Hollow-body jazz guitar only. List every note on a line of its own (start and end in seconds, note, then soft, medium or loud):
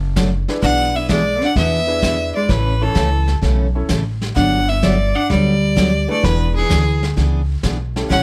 0.63 0.95 D4 medium
0.95 1.09 B3 medium
1.11 1.42 G#3 medium
1.42 1.56 D4 medium
1.57 2.31 B3 medium
2.37 2.51 G#3 medium
2.51 2.82 E3 medium
2.83 3.29 E3 medium
4.37 4.70 D4 medium
4.70 4.83 B3 medium
4.83 5.15 G3 medium
5.15 5.30 D4 medium
5.30 6.05 G3 medium
6.11 6.26 A3 medium
6.26 6.57 E3 medium
6.59 7.01 E3 medium
8.10 8.23 C#4 medium